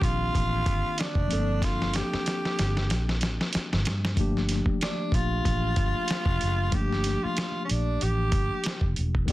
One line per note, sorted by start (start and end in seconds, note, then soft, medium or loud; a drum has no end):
0.00 0.30 A#1 medium
0.00 1.25 D#3 medium
0.00 1.26 A#3 medium
0.00 1.26 C4 medium
0.00 1.27 D4 medium
0.00 1.01 F4 medium
0.00 1.27 G4 medium
0.00 kick loud
0.00 closed hi-hat medium
0.35 0.62 A1 medium
0.35 kick medium
0.35 closed hi-hat medium
0.66 kick medium
0.66 closed hi-hat medium
0.98 1.65 D4 medium
0.98 snare medium
0.98 closed hi-hat medium
1.15 1.28 F1 medium
1.15 kick medium
1.28 3.80 F3 medium
1.28 1.37 A3 soft
1.28 3.81 C4 medium
1.28 3.82 D4 medium
1.28 closed hi-hat medium
1.32 2.00 G1 medium
1.32 3.84 A#3 medium
1.32 3.83 A4 medium
1.62 1.97 F4 medium
1.62 kick medium
1.62 snare medium
1.62 closed hi-hat medium
1.82 snare soft
1.94 3.22 G4 medium
1.94 snare medium
1.94 closed hi-hat medium
2.13 muted fingered electric bass stroke soft
2.13 snare medium
2.26 snare medium
2.26 closed hi-hat medium
2.45 snare medium
2.59 2.92 G1 medium
2.59 snare medium
2.59 closed hi-hat medium
2.77 snare medium
2.90 3.24 A#1 medium
2.90 snare medium
2.90 closed hi-hat medium
3.09 snare medium
3.21 3.38 A1 medium
3.21 snare medium
3.21 closed hi-hat medium
3.41 snare medium
3.53 muted fingered electric bass stroke soft
3.53 snare medium
3.53 closed hi-hat medium
3.73 3.84 G1 medium
3.73 snare medium
3.85 4.13 G2 medium
3.85 snare loud
3.85 closed hi-hat medium
4.05 snare medium
4.16 4.60 G1 loud
4.16 6.68 F3 medium
4.16 6.68 A3 medium
4.16 6.69 A#3 medium
4.16 6.69 D4 medium
4.16 kick loud
4.16 closed hi-hat medium
4.20 6.70 G4 medium
4.37 snare soft
4.49 snare soft
4.49 closed hi-hat medium
4.66 muted fingered electric bass stroke soft
4.66 kick medium
4.81 5.15 D4 medium
4.81 snare loud
4.81 closed hi-hat medium
5.12 5.40 A#1 medium
5.12 6.76 F4 medium
5.12 kick loud
5.12 closed hi-hat medium
5.45 5.73 A1 medium
5.45 kick medium
5.45 closed hi-hat medium
5.76 5.92 G1 medium
5.76 kick medium
5.76 closed hi-hat medium
6.08 snare medium
6.08 closed hi-hat medium
6.26 6.39 F1 medium
6.26 kick medium
6.41 6.69 F#1 medium
6.41 closed hi-hat medium
6.71 7.15 G1 medium
6.71 9.23 F3 medium
6.71 9.24 A3 medium
6.71 9.24 A#3 medium
6.71 9.25 D4 medium
6.71 7.25 G4 loud
6.71 kick loud
6.71 closed hi-hat medium
6.76 9.26 G4 medium
6.93 snare soft
7.04 snare soft
7.04 closed hi-hat medium
7.24 7.63 F4 medium
7.24 muted fingered electric bass stroke soft
7.37 snare loud
7.37 closed hi-hat medium
7.65 7.72 C#4 medium
7.69 7.97 A#1 medium
7.69 8.04 D4 medium
7.69 closed hi-hat medium
8.01 8.29 A1 loud
8.01 8.97 G4 medium
8.01 closed hi-hat medium
8.32 8.48 G1 medium
8.32 kick medium
8.32 closed hi-hat medium
8.64 snare loud
8.64 closed hi-hat medium
8.81 8.94 F1 medium
8.81 kick medium
8.96 9.29 E1 medium
8.96 closed hi-hat medium
9.15 kick medium
9.26 9.32 D#3 medium
9.26 9.32 A3 soft
9.26 9.32 C4 medium
9.26 kick medium
9.26 closed hi-hat medium